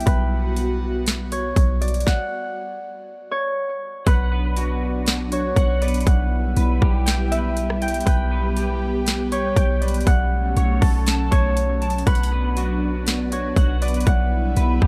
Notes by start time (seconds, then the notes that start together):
Already playing: G3 E5 G5
0.00 closed hi-hat
0.06 B1 B3 F#4 B4, kick, closed hi-hat
0.56 closed hi-hat
1.06 snare, closed hi-hat
1.32 C#5, closed hi-hat
1.56 B1, kick, closed hi-hat
1.81 D5, closed hi-hat
1.88 closed hi-hat
1.94 closed hi-hat
2.00 closed hi-hat
2.07 F#5, kick, snare
3.31 C#5
4.06 B1 F#3 B3 D4 B4 F#5, kick, closed hi-hat
4.32 B4
4.57 F#4, closed hi-hat
5.06 snare, closed hi-hat
5.32 F#4 C#5, closed hi-hat
5.56 B1 F#5, kick, closed hi-hat
5.82 B4 D5, closed hi-hat
5.88 closed hi-hat
5.94 closed hi-hat
6.01 closed hi-hat
6.07 B1 G3 E4 F#5, kick, closed hi-hat
6.57 B1 B4, closed hi-hat
6.81 B1 G4, kick
7.06 G5, snare, closed hi-hat
7.31 B4 E5, closed hi-hat
7.57 closed hi-hat
7.70 cross-stick
7.82 G5, closed hi-hat
7.88 closed hi-hat
7.94 closed hi-hat
8.00 closed hi-hat
8.06 B1 B3 G4 B4 G5, kick, closed hi-hat
8.31 B4
8.56 G4, closed hi-hat
9.07 snare, closed hi-hat
9.32 G4 C#5, closed hi-hat
9.56 B1 G5, kick, closed hi-hat
9.81 B4 D5, closed hi-hat
9.88 closed hi-hat
9.94 closed hi-hat
10.01 closed hi-hat
10.07 B1 F#3 A3 C#4 F#5, kick, closed hi-hat
10.57 B1 C#5, closed hi-hat
10.81 B1 A4, kick, open hi-hat
11.07 A5, snare, closed hi-hat
11.31 B1 C#5, kick, closed hi-hat
11.57 closed hi-hat
11.82 A5, closed hi-hat
11.90 closed hi-hat
11.98 closed hi-hat
12.06 B1 B3 D4 B4 F#5, kick, closed hi-hat
12.15 closed hi-hat
12.23 closed hi-hat
12.32 B4
12.57 F#4, closed hi-hat
13.07 snare, closed hi-hat
13.32 F#4 C#5, closed hi-hat
13.56 B1 F#5, kick, closed hi-hat
13.82 B4 D5, closed hi-hat
13.88 closed hi-hat
13.94 closed hi-hat
14.00 closed hi-hat
14.07 B1 G3 E4 F#5, kick, closed hi-hat
14.57 B1 B4, closed hi-hat
14.81 B1 G4, kick